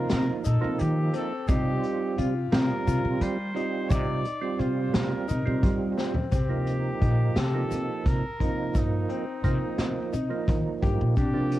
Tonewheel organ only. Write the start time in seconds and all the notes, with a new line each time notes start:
Already playing: F3 A#3 D#4
0.61 F3 A#3 D#4
1.48 G3 C4 F4
2.52 G3 C4 F4
3.54 G3 C4 F4
4.41 G3 C4 F4
5.46 G3 C4 F4
6.49 F3 A#3 D#4
7.54 F3 A#3 D#4
8.40 F3 A#3 D#4
9.44 F3 A#3 D#4
10.29 F3 A#3 D#4
11.33 F3 A#3 D4